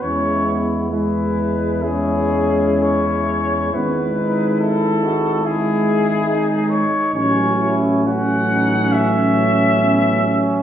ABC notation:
X:1
M:4/4
L:1/8
Q:1/4=69
K:E
V:1 name="Cornet"
c z B2 G2 c2 | B2 A2 G3 c | c z f2 e4 |]
V:2 name="Flugelhorn"
E2 E2 E4 | E4 E2 D z | C2 C6 |]
V:3 name="Trombone section"
C B, G,2 C4 | B, D E F E2 D2 | C E F D C2 B, C |]
V:4 name="Euphonium" clef=bass
G,2 G,2 G,4 | G,4 G,3 z | F,2 F,6 |]
V:5 name="Tuba" clef=bass
E,,8 | G,,,6- G,,, z | A,,,8 |]